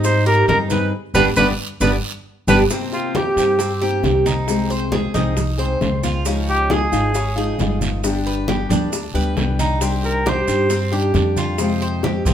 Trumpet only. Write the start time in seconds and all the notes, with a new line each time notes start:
0.05 C5
0.27 A#4
0.49 A#4
0.71 B4
1.15 B4
1.37 B4
1.81 B4
2.49 B4
2.94 F4
3.17 G4
6.50 G4
6.73 G#4
10.05 A#4
10.28 C5